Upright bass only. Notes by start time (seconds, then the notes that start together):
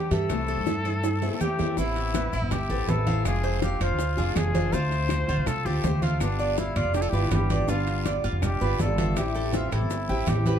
0.11 G2
0.30 C2
0.58 G2
1.59 E2
1.77 A1
2.33 A1
2.42 G1
2.69 A1
2.88 A1
3.25 F1
3.81 F1
3.89 D2
4.17 F1
4.36 F1
4.73 D2
5.28 D2
5.37 C2
5.65 D2
5.84 D2
6.21 G1
6.76 G1
6.85 F1
7.13 G1
7.31 G1
7.68 G1
8.24 G1
8.33 F1
8.61 G1
8.80 G1
9.17 A1
9.72 A1
9.81 G1
10.09 A1
10.27 A1